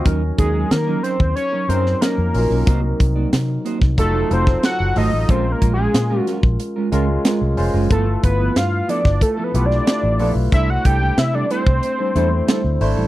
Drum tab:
HH |x-x-x-x-x-x-x-o-|x-x-x-x-x-x-x-o-|x-x-x-x-x-x-x-o-|x-x-x-x-x-x-x-o-|
SD |----o-o----oo---|----o--o---oo---|----o-o-----o---|----o--o---oo---|
BD |o-o----o--------|o-o----oo--o----|o-o----o--------|o-o----oo-------|

HH |x-x-x-x-x-x-x-o-|
SD |----o-------o---|
BD |o-o----o--------|